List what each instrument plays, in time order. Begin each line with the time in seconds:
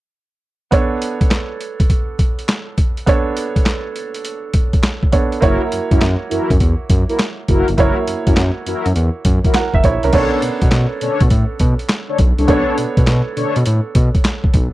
0.71 grand piano B3 D4 A4 C#5, kick, closed hi-hat
1.02 closed hi-hat
1.21 kick, closed hi-hat
1.31 snare, clap, closed hi-hat
1.61 closed hi-hat
1.80 kick, closed hi-hat
1.90 kick, closed hi-hat
2.19 kick, closed hi-hat
2.39 closed hi-hat
2.48 snare, clap, closed hi-hat
2.78 kick, closed hi-hat
2.97 closed hi-hat
3.06 grand piano B3 D4 A4 C#5, kick, closed hi-hat
3.37 closed hi-hat
3.56 kick, closed hi-hat
3.66 snare, clap, closed hi-hat
3.96 closed hi-hat
4.14 closed hi-hat
4.25 closed hi-hat
4.54 kick, closed hi-hat
4.73 kick, closed hi-hat
4.83 snare, clap, closed hi-hat
5.03 kick
5.12 grand piano B3 D4 A4 C#5, kick, closed hi-hat
5.32 closed hi-hat
5.41 analog synth bass F#1, grand piano A#3 E4 F#4 C#5, analog polysynth E4 F#4 A#4, kick, closed hi-hat
5.72 analog synth bass F#2, closed hi-hat
5.91 analog synth bass F#2, analog polysynth E4 F#4 A#4, kick, closed hi-hat
6.01 analog synth bass F#2, snare, clap, closed hi-hat
6.30 analog synth bass F#2, analog polysynth E4 F#4 A#4, closed hi-hat
6.50 analog synth bass F#2, kick, closed hi-hat
6.60 analog synth bass E2, kick, closed hi-hat
6.90 analog synth bass F#2, kick, closed hi-hat
7.09 analog polysynth E4 F#4 A#4, closed hi-hat
7.19 snare, clap, closed hi-hat
7.48 analog synth bass F#1, analog polysynth E4 F#4 A#4, kick, closed hi-hat
7.68 analog synth bass G1, closed hi-hat
7.77 analog synth bass F#1, grand piano A#3 E4 F#4 C#5, analog polysynth E4 F#4 A#4, kick, closed hi-hat
8.07 analog synth bass F#2, closed hi-hat
8.27 analog synth bass F#2, analog polysynth E4 F#4 A#4, kick, closed hi-hat
8.37 analog synth bass F#2, snare, clap, closed hi-hat
8.66 analog synth bass F#2, analog polysynth E4 F#4 A#4, closed hi-hat
8.86 analog synth bass F#2, closed hi-hat
8.96 analog synth bass E2, closed hi-hat
9.25 analog synth bass F#2, kick, closed hi-hat
9.44 analog polysynth E4 F#4 A#4, kick, closed hi-hat
9.54 grand piano A#4 F#5, snare, clap, closed hi-hat
9.74 analog synth bass F#1, grand piano E5, kick
9.84 analog synth bass A#1, grand piano E4 C#5, kick, closed hi-hat
10.03 analog synth bass C2, grand piano C#4 A#4, closed hi-hat
10.13 analog synth bass B1, grand piano B3 D4 A4 C#5, analog polysynth D4 A4 C#5, kick, closed hi-hat, crash
10.42 analog synth bass B2, closed hi-hat
10.62 analog synth bass B2, kick, closed hi-hat
10.71 analog synth bass B2, snare, clap, closed hi-hat
11.01 analog synth bass B2, analog polysynth D4 A4 C#5, closed hi-hat
11.20 analog synth bass B2, kick, closed hi-hat
11.30 analog synth bass A2, kick, closed hi-hat
11.59 analog synth bass B2, kick, closed hi-hat
11.79 closed hi-hat
11.89 snare, clap, closed hi-hat
12.08 analog polysynth D4 A4 C#5
12.18 analog synth bass B1, kick, closed hi-hat
12.38 analog synth bass C2, analog polysynth D4 A4 C#5, closed hi-hat
12.48 analog synth bass B1, grand piano B3 D4 A4 C#5, analog polysynth D4 A4 C#5, kick, closed hi-hat
12.78 analog synth bass B2, closed hi-hat
12.97 analog synth bass B2, kick, closed hi-hat
13.07 analog synth bass B2, snare, clap, closed hi-hat
13.36 analog synth bass B2, analog polysynth D4 A4 C#5, closed hi-hat
13.56 analog synth bass B2, closed hi-hat
13.66 analog synth bass A2, closed hi-hat
13.95 analog synth bass B2, kick, closed hi-hat
14.15 kick, closed hi-hat
14.24 snare, clap, closed hi-hat
14.44 kick
14.54 analog synth bass B1, kick, closed hi-hat